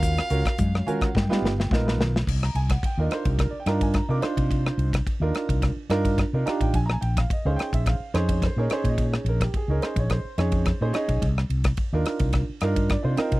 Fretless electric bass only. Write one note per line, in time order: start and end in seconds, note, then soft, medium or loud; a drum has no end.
0.00 0.18 D#2 medium
0.31 0.42 C#2 medium
0.59 0.80 F#2 medium
1.15 1.26 G2 loud
1.29 1.40 G3 medium
1.42 1.68 G1 medium
1.71 1.96 A#1 medium
1.98 2.24 B1 medium
2.27 2.49 C2 medium
2.55 2.76 C2 medium
2.98 3.08 D#2 medium
3.25 3.47 C2 medium
3.52 muted fretless electric bass stroke soft
3.66 3.99 G2 medium
4.09 4.19 C3 medium
4.22 muted fretless electric bass stroke soft
4.37 4.69 C3 medium
4.78 5.00 C2 medium
5.20 5.31 D#2 medium
5.49 5.71 C2 medium
5.76 muted fretless electric bass stroke soft
5.90 6.23 G2 medium
6.33 6.43 C3 medium
6.47 muted fretless electric bass stroke soft
6.60 6.71 A1 medium
6.74 6.96 A#1 loud
7.02 7.24 A#1 medium
7.45 7.56 C#2 medium
7.73 7.94 A#1 medium
8.00 muted fretless electric bass stroke soft
8.14 8.47 F2 medium
8.57 8.67 A#2 medium
8.70 muted fretless electric bass stroke soft
8.84 9.16 A#2 medium
9.25 9.47 A#1 medium
9.68 9.79 C#2 medium
9.96 10.18 A#1 medium
10.25 muted fretless electric bass stroke soft
10.38 10.71 F2 medium
10.81 10.91 A#2 medium
10.93 muted fretless electric bass stroke soft
11.08 11.19 B1 medium
11.22 11.44 C2 medium
11.50 11.72 C2 medium
11.93 12.03 D#2 medium
12.20 12.42 C2 medium
12.49 muted fretless electric bass stroke soft
12.62 12.95 G2 medium
13.04 13.15 C3 medium
13.18 muted fretless electric bass stroke soft
13.32 13.40 C3 medium